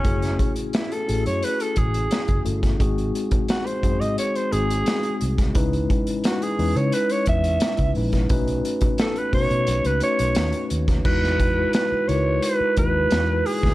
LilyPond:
<<
  \new Staff \with { instrumentName = "Alto saxophone" } { \time 4/4 \key e \major \tempo 4 = 87 cis'8. r16 e'16 a'8 cis''16 b'16 a'16 gis'4 r8 | r4 fis'16 bis'8 dis''16 cis''16 bis'16 gis'4 r8 | r4 fis'16 gis'8 cis''16 b'16 cis''16 e''4 r8 | r4 a'16 b'16 cis''8. b'16 cis''4 r8 |
b'4 b'8 cis''8 b'8 b'4 gis'8 | }
  \new Staff \with { instrumentName = "Tine electric piano" } { \time 4/4 \key e \major <a cis' e' fis' gis'>4 r8 <a cis' e' fis' gis'>4. r8 <a cis' e' fis' a'>16 r16 | <gis bis dis' fis' gis'>4 r8 <gis bis dis' fis' gis'>8. r16 <gis bis dis' fis' gis'>4 r8 | <gis cis' dis' e' b'>4 r8 <gis cis' dis' e' b'>4. r8 <gis cis' dis' e' b'>16 r16 | <a cis' dis' fis' b'>4 r8 <a cis' dis' fis' b'>8. r16 <a cis' dis' fis' cis''>4 r8 |
<gis dis' e' fis' b'>8 r16 <gis dis' e' fis' b'>8 r16 <gis dis' e' fis' ais' b'>8. r16 <gis dis' e' fis' b'>4 r8 | }
  \new Staff \with { instrumentName = "Fingered electric bass" } { \clef bass \time 4/4 \key e \major fis,,8 r4 a,,16 fis,16 r8 a,,8 r16 fis,,16 g,,8 | gis,,8 r4 fis,16 gis,16 r8 gis,,8 r8 bis,,8 | cis,8 r4 e,16 cis16 r8 e,8 r16 cis,16 ais,,8 | b,,8 r4 b,16 b,16 b,,16 cis,16 r16 b,,16 dis,16 r16 dis,8 |
e,4 r8 cis,8 r8 dis,8 e,8 r16 d,16 | }
  \new DrumStaff \with { instrumentName = "Drums" } \drummode { \time 4/4 <hh bd>16 <hh sn>16 <hh bd>16 hh16 <hh sn>16 hh16 hh16 hh16 hh16 hh16 <hh bd>16 hh16 <hh sn>16 <hh bd>16 hh16 <hh bd sn>16 | <hh bd>16 hh16 hh16 <hh bd>16 <hh sn>16 hh16 <hh bd>16 hh16 hh16 hh16 hh16 hh16 <hh sn>16 hh16 hh16 <hh bd sn>16 | <hh bd>16 hh16 <hh bd>16 hh16 <hh sn>16 hh16 hho16 hh16 hh16 hh16 <hh bd>16 hh16 <hh sn>16 <hh bd>16 hho16 <hh bd sn>16 | <hh bd>16 hh16 hh16 <hh bd>16 <hh sn>16 hh16 <hho bd>16 hh16 hh16 hh16 hh16 hh16 <hh sn>16 hh16 hh16 <hh bd sn>16 |
<cymc bd>16 sn16 <hh bd>8 <hh sn>8 hh8 hh8 <hh bd>8 <hh sn>8 hho16 <bd sn>16 | }
>>